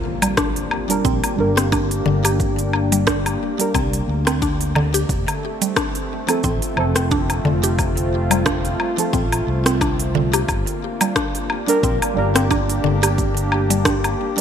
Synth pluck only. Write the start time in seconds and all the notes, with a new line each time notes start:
0.22 G3
0.37 D4
1.05 C4
1.57 C4
1.72 D4
2.06 D3
2.24 G4
2.92 G3
3.07 D4
3.74 C4
4.27 C4
4.42 D4
4.76 D3
4.94 G4
5.62 G3
5.76 D4
6.44 C4
6.96 C4
7.11 D4
7.45 D3
7.64 G4
8.31 G3
8.46 D4
9.13 C4
9.66 C4
9.81 D4
10.15 D3
10.34 G4
11.01 G3
11.16 D4
11.83 C4
12.36 C4
12.51 D4
12.84 D3
13.03 G4
13.70 G3
13.85 D4